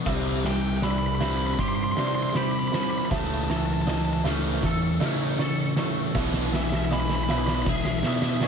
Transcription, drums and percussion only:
0, 0, Header, 1, 2, 480
1, 0, Start_track
1, 0, Tempo, 760456
1, 42, Time_signature, 4, 2, 24, 8
1, 5351, End_track
2, 0, Start_track
2, 0, Title_t, "Drums"
2, 39, Note_on_c, 9, 36, 95
2, 40, Note_on_c, 9, 38, 75
2, 40, Note_on_c, 9, 49, 81
2, 102, Note_off_c, 9, 36, 0
2, 104, Note_off_c, 9, 38, 0
2, 104, Note_off_c, 9, 49, 0
2, 282, Note_on_c, 9, 38, 71
2, 345, Note_off_c, 9, 38, 0
2, 518, Note_on_c, 9, 38, 80
2, 582, Note_off_c, 9, 38, 0
2, 761, Note_on_c, 9, 38, 79
2, 824, Note_off_c, 9, 38, 0
2, 1001, Note_on_c, 9, 38, 82
2, 1002, Note_on_c, 9, 36, 106
2, 1065, Note_off_c, 9, 36, 0
2, 1065, Note_off_c, 9, 38, 0
2, 1242, Note_on_c, 9, 38, 77
2, 1305, Note_off_c, 9, 38, 0
2, 1482, Note_on_c, 9, 38, 81
2, 1545, Note_off_c, 9, 38, 0
2, 1726, Note_on_c, 9, 38, 73
2, 1789, Note_off_c, 9, 38, 0
2, 1963, Note_on_c, 9, 36, 100
2, 1965, Note_on_c, 9, 38, 82
2, 2027, Note_off_c, 9, 36, 0
2, 2028, Note_off_c, 9, 38, 0
2, 2207, Note_on_c, 9, 38, 81
2, 2270, Note_off_c, 9, 38, 0
2, 2445, Note_on_c, 9, 38, 88
2, 2508, Note_off_c, 9, 38, 0
2, 2685, Note_on_c, 9, 38, 91
2, 2748, Note_off_c, 9, 38, 0
2, 2923, Note_on_c, 9, 36, 108
2, 2923, Note_on_c, 9, 38, 88
2, 2986, Note_off_c, 9, 36, 0
2, 2986, Note_off_c, 9, 38, 0
2, 3165, Note_on_c, 9, 38, 85
2, 3228, Note_off_c, 9, 38, 0
2, 3403, Note_on_c, 9, 38, 88
2, 3466, Note_off_c, 9, 38, 0
2, 3638, Note_on_c, 9, 38, 85
2, 3701, Note_off_c, 9, 38, 0
2, 3881, Note_on_c, 9, 36, 100
2, 3882, Note_on_c, 9, 38, 93
2, 3882, Note_on_c, 9, 57, 93
2, 3944, Note_off_c, 9, 36, 0
2, 3945, Note_off_c, 9, 38, 0
2, 3945, Note_off_c, 9, 57, 0
2, 3999, Note_on_c, 9, 38, 94
2, 4062, Note_off_c, 9, 38, 0
2, 4124, Note_on_c, 9, 38, 91
2, 4187, Note_off_c, 9, 38, 0
2, 4242, Note_on_c, 9, 38, 99
2, 4305, Note_off_c, 9, 38, 0
2, 4363, Note_on_c, 9, 38, 100
2, 4426, Note_off_c, 9, 38, 0
2, 4478, Note_on_c, 9, 38, 93
2, 4541, Note_off_c, 9, 38, 0
2, 4599, Note_on_c, 9, 38, 98
2, 4663, Note_off_c, 9, 38, 0
2, 4718, Note_on_c, 9, 38, 105
2, 4781, Note_off_c, 9, 38, 0
2, 4837, Note_on_c, 9, 38, 103
2, 4838, Note_on_c, 9, 36, 109
2, 4900, Note_off_c, 9, 38, 0
2, 4901, Note_off_c, 9, 36, 0
2, 4953, Note_on_c, 9, 38, 100
2, 5016, Note_off_c, 9, 38, 0
2, 5069, Note_on_c, 9, 38, 98
2, 5132, Note_off_c, 9, 38, 0
2, 5187, Note_on_c, 9, 38, 106
2, 5250, Note_off_c, 9, 38, 0
2, 5306, Note_on_c, 9, 38, 99
2, 5351, Note_off_c, 9, 38, 0
2, 5351, End_track
0, 0, End_of_file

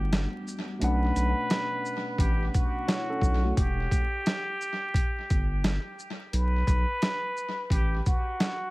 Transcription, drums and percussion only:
0, 0, Header, 1, 2, 480
1, 0, Start_track
1, 0, Key_signature, 1, "minor"
1, 0, Tempo, 689655
1, 566, Time_signature, 4, 2, 24, 8
1, 6058, End_track
2, 0, Start_track
2, 0, Title_t, "Drums"
2, 88, Note_on_c, 9, 38, 124
2, 88, Note_on_c, 9, 42, 68
2, 158, Note_off_c, 9, 38, 0
2, 158, Note_off_c, 9, 42, 0
2, 331, Note_on_c, 9, 82, 63
2, 400, Note_off_c, 9, 82, 0
2, 567, Note_on_c, 9, 42, 95
2, 637, Note_off_c, 9, 42, 0
2, 808, Note_on_c, 9, 42, 63
2, 808, Note_on_c, 9, 82, 64
2, 878, Note_off_c, 9, 42, 0
2, 878, Note_off_c, 9, 82, 0
2, 1045, Note_on_c, 9, 42, 68
2, 1050, Note_on_c, 9, 38, 105
2, 1115, Note_off_c, 9, 42, 0
2, 1119, Note_off_c, 9, 38, 0
2, 1290, Note_on_c, 9, 82, 64
2, 1360, Note_off_c, 9, 82, 0
2, 1520, Note_on_c, 9, 36, 102
2, 1530, Note_on_c, 9, 42, 104
2, 1590, Note_off_c, 9, 36, 0
2, 1600, Note_off_c, 9, 42, 0
2, 1770, Note_on_c, 9, 42, 51
2, 1770, Note_on_c, 9, 82, 51
2, 1772, Note_on_c, 9, 36, 104
2, 1840, Note_off_c, 9, 42, 0
2, 1840, Note_off_c, 9, 82, 0
2, 1841, Note_off_c, 9, 36, 0
2, 2008, Note_on_c, 9, 38, 126
2, 2008, Note_on_c, 9, 42, 70
2, 2077, Note_off_c, 9, 38, 0
2, 2077, Note_off_c, 9, 42, 0
2, 2238, Note_on_c, 9, 36, 93
2, 2251, Note_on_c, 9, 82, 63
2, 2307, Note_off_c, 9, 36, 0
2, 2321, Note_off_c, 9, 82, 0
2, 2486, Note_on_c, 9, 36, 117
2, 2487, Note_on_c, 9, 42, 97
2, 2556, Note_off_c, 9, 36, 0
2, 2557, Note_off_c, 9, 42, 0
2, 2724, Note_on_c, 9, 36, 99
2, 2728, Note_on_c, 9, 42, 63
2, 2728, Note_on_c, 9, 82, 62
2, 2794, Note_off_c, 9, 36, 0
2, 2798, Note_off_c, 9, 42, 0
2, 2798, Note_off_c, 9, 82, 0
2, 2966, Note_on_c, 9, 42, 67
2, 2970, Note_on_c, 9, 38, 105
2, 3035, Note_off_c, 9, 42, 0
2, 3040, Note_off_c, 9, 38, 0
2, 3210, Note_on_c, 9, 82, 62
2, 3280, Note_off_c, 9, 82, 0
2, 3440, Note_on_c, 9, 36, 101
2, 3450, Note_on_c, 9, 42, 103
2, 3510, Note_off_c, 9, 36, 0
2, 3520, Note_off_c, 9, 42, 0
2, 3691, Note_on_c, 9, 42, 51
2, 3691, Note_on_c, 9, 82, 50
2, 3692, Note_on_c, 9, 36, 101
2, 3760, Note_off_c, 9, 42, 0
2, 3760, Note_off_c, 9, 82, 0
2, 3762, Note_off_c, 9, 36, 0
2, 3927, Note_on_c, 9, 38, 125
2, 3927, Note_on_c, 9, 42, 71
2, 3997, Note_off_c, 9, 38, 0
2, 3997, Note_off_c, 9, 42, 0
2, 4170, Note_on_c, 9, 82, 65
2, 4240, Note_off_c, 9, 82, 0
2, 4408, Note_on_c, 9, 42, 97
2, 4477, Note_off_c, 9, 42, 0
2, 4645, Note_on_c, 9, 36, 100
2, 4648, Note_on_c, 9, 42, 61
2, 4648, Note_on_c, 9, 82, 63
2, 4714, Note_off_c, 9, 36, 0
2, 4718, Note_off_c, 9, 42, 0
2, 4718, Note_off_c, 9, 82, 0
2, 4886, Note_on_c, 9, 42, 67
2, 4890, Note_on_c, 9, 38, 106
2, 4955, Note_off_c, 9, 42, 0
2, 4960, Note_off_c, 9, 38, 0
2, 5130, Note_on_c, 9, 82, 63
2, 5200, Note_off_c, 9, 82, 0
2, 5361, Note_on_c, 9, 36, 97
2, 5371, Note_on_c, 9, 42, 100
2, 5431, Note_off_c, 9, 36, 0
2, 5440, Note_off_c, 9, 42, 0
2, 5611, Note_on_c, 9, 42, 49
2, 5611, Note_on_c, 9, 82, 52
2, 5612, Note_on_c, 9, 36, 101
2, 5681, Note_off_c, 9, 42, 0
2, 5681, Note_off_c, 9, 82, 0
2, 5682, Note_off_c, 9, 36, 0
2, 5848, Note_on_c, 9, 38, 125
2, 5848, Note_on_c, 9, 42, 69
2, 5918, Note_off_c, 9, 38, 0
2, 5918, Note_off_c, 9, 42, 0
2, 6058, End_track
0, 0, End_of_file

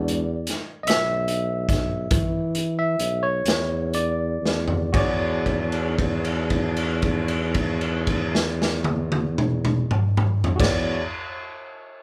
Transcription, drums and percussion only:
0, 0, Header, 1, 2, 480
1, 0, Start_track
1, 0, Tempo, 793651
1, 773, Tempo, 839161
1, 1253, Tempo, 882353
1, 1733, Tempo, 937500
1, 2213, Tempo, 1006711
1, 2693, Tempo, 1047120
1, 2694, Time_signature, 12, 3, 24, 8
1, 5940, End_track
2, 0, Start_track
2, 0, Title_t, "Drums"
2, 49, Note_on_c, 9, 42, 54
2, 109, Note_off_c, 9, 42, 0
2, 283, Note_on_c, 9, 42, 66
2, 299, Note_on_c, 9, 38, 31
2, 343, Note_off_c, 9, 42, 0
2, 359, Note_off_c, 9, 38, 0
2, 527, Note_on_c, 9, 42, 92
2, 542, Note_on_c, 9, 38, 116
2, 587, Note_off_c, 9, 42, 0
2, 603, Note_off_c, 9, 38, 0
2, 774, Note_on_c, 9, 42, 60
2, 831, Note_off_c, 9, 42, 0
2, 1007, Note_on_c, 9, 36, 78
2, 1010, Note_on_c, 9, 42, 66
2, 1025, Note_on_c, 9, 38, 33
2, 1064, Note_off_c, 9, 36, 0
2, 1067, Note_off_c, 9, 42, 0
2, 1082, Note_off_c, 9, 38, 0
2, 1247, Note_on_c, 9, 42, 93
2, 1249, Note_on_c, 9, 36, 110
2, 1302, Note_off_c, 9, 42, 0
2, 1304, Note_off_c, 9, 36, 0
2, 1487, Note_on_c, 9, 42, 61
2, 1542, Note_off_c, 9, 42, 0
2, 1730, Note_on_c, 9, 42, 61
2, 1782, Note_off_c, 9, 42, 0
2, 1966, Note_on_c, 9, 42, 85
2, 1980, Note_on_c, 9, 38, 97
2, 2018, Note_off_c, 9, 42, 0
2, 2031, Note_off_c, 9, 38, 0
2, 2212, Note_on_c, 9, 42, 66
2, 2260, Note_off_c, 9, 42, 0
2, 2460, Note_on_c, 9, 38, 62
2, 2508, Note_off_c, 9, 38, 0
2, 2565, Note_on_c, 9, 43, 83
2, 2613, Note_off_c, 9, 43, 0
2, 2690, Note_on_c, 9, 36, 96
2, 2692, Note_on_c, 9, 49, 74
2, 2736, Note_off_c, 9, 36, 0
2, 2738, Note_off_c, 9, 49, 0
2, 2930, Note_on_c, 9, 36, 54
2, 2931, Note_on_c, 9, 49, 36
2, 2975, Note_off_c, 9, 36, 0
2, 2977, Note_off_c, 9, 49, 0
2, 3049, Note_on_c, 9, 57, 43
2, 3095, Note_off_c, 9, 57, 0
2, 3170, Note_on_c, 9, 36, 67
2, 3174, Note_on_c, 9, 49, 44
2, 3216, Note_off_c, 9, 36, 0
2, 3220, Note_off_c, 9, 49, 0
2, 3290, Note_on_c, 9, 57, 47
2, 3335, Note_off_c, 9, 57, 0
2, 3407, Note_on_c, 9, 49, 44
2, 3409, Note_on_c, 9, 36, 61
2, 3453, Note_off_c, 9, 49, 0
2, 3455, Note_off_c, 9, 36, 0
2, 3528, Note_on_c, 9, 57, 49
2, 3574, Note_off_c, 9, 57, 0
2, 3645, Note_on_c, 9, 49, 43
2, 3648, Note_on_c, 9, 36, 67
2, 3691, Note_off_c, 9, 49, 0
2, 3694, Note_off_c, 9, 36, 0
2, 3765, Note_on_c, 9, 57, 47
2, 3810, Note_off_c, 9, 57, 0
2, 3885, Note_on_c, 9, 49, 49
2, 3887, Note_on_c, 9, 36, 66
2, 3931, Note_off_c, 9, 49, 0
2, 3933, Note_off_c, 9, 36, 0
2, 4007, Note_on_c, 9, 57, 43
2, 4053, Note_off_c, 9, 57, 0
2, 4125, Note_on_c, 9, 49, 52
2, 4127, Note_on_c, 9, 36, 65
2, 4171, Note_off_c, 9, 49, 0
2, 4173, Note_off_c, 9, 36, 0
2, 4254, Note_on_c, 9, 38, 88
2, 4300, Note_off_c, 9, 38, 0
2, 4377, Note_on_c, 9, 38, 78
2, 4423, Note_off_c, 9, 38, 0
2, 4481, Note_on_c, 9, 48, 95
2, 4527, Note_off_c, 9, 48, 0
2, 4606, Note_on_c, 9, 48, 98
2, 4652, Note_off_c, 9, 48, 0
2, 4728, Note_on_c, 9, 47, 92
2, 4773, Note_off_c, 9, 47, 0
2, 4849, Note_on_c, 9, 47, 101
2, 4895, Note_off_c, 9, 47, 0
2, 4969, Note_on_c, 9, 45, 91
2, 5014, Note_off_c, 9, 45, 0
2, 5090, Note_on_c, 9, 45, 103
2, 5136, Note_off_c, 9, 45, 0
2, 5213, Note_on_c, 9, 43, 99
2, 5258, Note_off_c, 9, 43, 0
2, 5284, Note_on_c, 9, 36, 105
2, 5286, Note_on_c, 9, 49, 99
2, 5298, Note_on_c, 9, 38, 98
2, 5330, Note_off_c, 9, 36, 0
2, 5332, Note_off_c, 9, 49, 0
2, 5344, Note_off_c, 9, 38, 0
2, 5940, End_track
0, 0, End_of_file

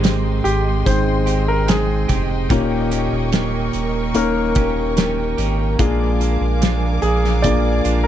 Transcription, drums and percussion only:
0, 0, Header, 1, 2, 480
1, 0, Start_track
1, 0, Key_signature, -4, "major"
1, 0, Tempo, 821918
1, 1465, Time_signature, 4, 2, 24, 8
1, 4715, End_track
2, 0, Start_track
2, 0, Title_t, "Drums"
2, 22, Note_on_c, 9, 42, 89
2, 29, Note_on_c, 9, 38, 91
2, 80, Note_off_c, 9, 42, 0
2, 87, Note_off_c, 9, 38, 0
2, 263, Note_on_c, 9, 42, 65
2, 321, Note_off_c, 9, 42, 0
2, 504, Note_on_c, 9, 36, 79
2, 506, Note_on_c, 9, 42, 86
2, 563, Note_off_c, 9, 36, 0
2, 564, Note_off_c, 9, 42, 0
2, 741, Note_on_c, 9, 42, 60
2, 799, Note_off_c, 9, 42, 0
2, 983, Note_on_c, 9, 42, 95
2, 990, Note_on_c, 9, 38, 105
2, 1041, Note_off_c, 9, 42, 0
2, 1048, Note_off_c, 9, 38, 0
2, 1220, Note_on_c, 9, 42, 72
2, 1223, Note_on_c, 9, 36, 80
2, 1278, Note_off_c, 9, 42, 0
2, 1282, Note_off_c, 9, 36, 0
2, 1461, Note_on_c, 9, 36, 117
2, 1461, Note_on_c, 9, 42, 83
2, 1519, Note_off_c, 9, 36, 0
2, 1520, Note_off_c, 9, 42, 0
2, 1702, Note_on_c, 9, 42, 66
2, 1761, Note_off_c, 9, 42, 0
2, 1941, Note_on_c, 9, 42, 94
2, 1948, Note_on_c, 9, 38, 103
2, 1999, Note_off_c, 9, 42, 0
2, 2006, Note_off_c, 9, 38, 0
2, 2180, Note_on_c, 9, 42, 68
2, 2239, Note_off_c, 9, 42, 0
2, 2420, Note_on_c, 9, 42, 76
2, 2479, Note_off_c, 9, 42, 0
2, 2658, Note_on_c, 9, 42, 60
2, 2663, Note_on_c, 9, 36, 89
2, 2716, Note_off_c, 9, 42, 0
2, 2721, Note_off_c, 9, 36, 0
2, 2902, Note_on_c, 9, 42, 94
2, 2909, Note_on_c, 9, 38, 96
2, 2960, Note_off_c, 9, 42, 0
2, 2968, Note_off_c, 9, 38, 0
2, 3143, Note_on_c, 9, 42, 78
2, 3202, Note_off_c, 9, 42, 0
2, 3382, Note_on_c, 9, 42, 85
2, 3383, Note_on_c, 9, 36, 116
2, 3440, Note_off_c, 9, 42, 0
2, 3442, Note_off_c, 9, 36, 0
2, 3626, Note_on_c, 9, 42, 63
2, 3685, Note_off_c, 9, 42, 0
2, 3865, Note_on_c, 9, 42, 88
2, 3873, Note_on_c, 9, 38, 101
2, 3924, Note_off_c, 9, 42, 0
2, 3931, Note_off_c, 9, 38, 0
2, 4100, Note_on_c, 9, 42, 63
2, 4158, Note_off_c, 9, 42, 0
2, 4230, Note_on_c, 9, 38, 36
2, 4289, Note_off_c, 9, 38, 0
2, 4343, Note_on_c, 9, 42, 90
2, 4347, Note_on_c, 9, 36, 77
2, 4401, Note_off_c, 9, 42, 0
2, 4405, Note_off_c, 9, 36, 0
2, 4584, Note_on_c, 9, 42, 65
2, 4642, Note_off_c, 9, 42, 0
2, 4715, End_track
0, 0, End_of_file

